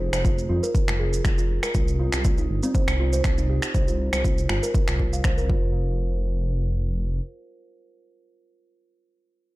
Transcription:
0.13 0.46 F1 loud
0.13 0.24 C5 medium
0.13 finger snap medium
0.13 shaker medium
0.24 0.36 F4 medium
0.24 kick loud
0.24 shaker medium
0.38 shaker soft
0.49 0.61 F2 medium
0.49 0.61 F4 medium
0.63 0.73 A#4 medium
0.63 shaker medium
0.75 kick loud
0.75 shaker medium
0.88 1.21 F1 medium
0.88 0.99 F4 medium
0.88 finger snap medium
0.88 shaker soft
1.00 1.07 G#4 medium
1.13 shaker medium
1.25 1.59 F1 loud
1.25 1.37 F4 medium
1.25 finger snap medium
1.25 kick loud
1.25 shaker medium
1.38 1.48 F4 medium
1.38 shaker soft
1.63 1.73 A#4 medium
1.63 finger snap medium
1.63 shaker medium
1.75 2.09 C2 medium
1.75 1.87 F4 medium
1.75 kick loud
1.75 shaker medium
1.88 shaker soft
1.99 2.12 F4 medium
2.12 2.47 C2 medium
2.12 finger snap medium
2.12 shaker medium
2.24 2.37 F4 medium
2.24 kick loud
2.24 shaker medium
2.38 2.48 D#4 medium
2.38 shaker soft
2.50 2.61 G1 medium
2.63 2.73 C4 medium
2.63 shaker medium
2.74 2.87 C5 medium
2.74 kick loud
2.74 shaker medium
2.88 3.21 C2 medium
2.88 finger snap medium
2.88 shaker soft
3.00 3.12 F4 loud
3.13 3.23 C5 medium
3.13 shaker medium
3.24 3.59 C2 medium
3.24 finger snap medium
3.24 kick loud
3.24 shaker medium
3.38 3.48 D#4 medium
3.38 shaker soft
3.50 3.62 G4 medium
3.62 finger snap medium
3.62 shaker medium
3.75 4.09 C2 medium
3.75 3.87 C5 medium
3.75 kick loud
3.75 shaker medium
3.88 3.98 F4 medium
3.88 shaker soft
4.13 4.46 C2 medium
4.13 4.24 C5 medium
4.13 finger snap medium
4.13 shaker medium
4.24 4.36 F4 medium
4.24 kick loud
4.24 shaker medium
4.38 shaker soft
4.49 4.61 G1 medium
4.49 4.61 F4 medium
4.49 finger snap medium
4.63 4.73 A#4 medium
4.63 shaker medium
4.75 kick loud
4.75 shaker medium
4.88 5.21 C2 medium
4.88 4.98 F4 medium
4.88 finger snap medium
4.88 shaker soft
4.99 5.12 F4 medium
4.99 kick medium
5.13 5.19 F5 medium
5.13 shaker medium
5.24 5.49 C2 medium
5.24 5.36 C5 medium
5.24 finger snap medium
5.24 kick loud
5.24 shaker medium
5.38 5.48 A#4 medium
5.38 shaker soft
5.49 7.21 F1 medium
5.49 5.96 F4 medium
5.49 kick loud

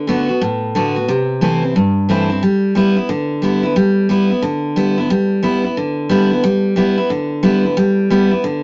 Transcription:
0.07 0.28 D3 medium
0.07 0.28 A3 medium
0.07 0.28 B3 medium
0.07 0.28 F#4 loud
0.29 0.41 B3 soft
0.29 0.40 F#4 medium
0.41 1.06 A2 medium
0.75 0.95 D3 medium
0.75 0.96 A3 medium
0.75 0.96 B3 medium
0.75 0.95 F#4 loud
0.96 1.08 B3 medium
0.96 1.07 F#4 medium
1.08 1.73 C3 loud
1.41 1.62 E3 medium
1.41 1.62 A3 medium
1.41 1.62 C4 medium
1.41 1.62 E4 medium
1.63 1.75 C4 soft
1.63 1.74 E4 medium
1.76 2.40 G2 medium
2.09 2.29 E3 medium
2.09 2.29 A3 medium
2.09 2.30 C4 medium
2.09 2.29 E4 loud
2.30 2.42 C4 medium
2.30 2.41 E4 medium
2.43 2.74 G3 medium
2.75 2.96 G3 medium
2.75 2.96 B3 medium
2.75 2.95 E4 loud
2.96 3.09 B3 medium
2.96 3.08 E4 medium
3.09 3.73 D3 medium
3.42 3.63 G3 medium
3.42 3.63 B3 medium
3.42 3.62 E4 medium
3.63 3.76 B3 medium
3.63 3.75 E4 medium
3.76 4.08 G3 medium
4.09 4.30 G3 medium
4.09 4.30 B3 medium
4.09 4.29 E4 medium
4.30 4.43 B3 soft
4.30 4.42 E4 medium
4.42 5.07 D3 medium
4.76 4.97 G3 medium
4.76 4.97 B3 medium
4.76 4.96 E4 loud
4.98 5.10 B3 medium
4.98 5.09 E4 medium
5.10 5.41 G3 medium
5.43 5.63 G3 medium
5.43 5.64 B3 medium
5.43 5.63 E4 medium
5.64 5.77 B3 soft
5.64 5.76 E4 medium
5.77 6.41 D3 medium
6.09 6.30 G3 medium
6.09 6.31 B3 loud
6.09 6.30 E4 loud
6.31 6.44 B3 medium
6.31 6.43 E4 medium
6.44 6.75 G3 loud
6.76 6.97 G3 medium
6.76 6.97 B3 loud
6.76 6.96 E4 loud
6.97 7.10 B3 soft
6.97 7.09 E4 medium
7.10 7.75 D3 medium
7.43 7.64 G3 loud
7.43 7.64 B3 medium
7.43 7.63 E4 medium
7.64 7.77 B3 soft
7.64 7.76 E4 medium
7.77 8.09 G3 loud
8.10 8.31 G3 medium
8.10 8.31 B3 medium
8.10 8.30 E4 loud
8.31 8.44 B3 medium
8.31 8.43 E4 medium
8.44 8.63 D3 medium

